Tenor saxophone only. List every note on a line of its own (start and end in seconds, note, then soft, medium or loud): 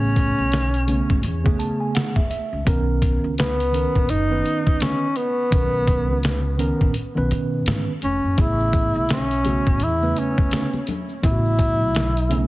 0.00 1.20 C#4 loud
3.39 4.11 B3 medium
4.10 4.83 D#4 loud
4.82 5.18 C#4 medium
5.17 6.60 B3 medium
8.04 8.42 C#4 medium
8.41 9.11 E4 loud
9.12 9.85 C#4 medium
9.84 10.21 E4 medium
10.19 10.89 C#4 medium
11.25 12.47 E4 loud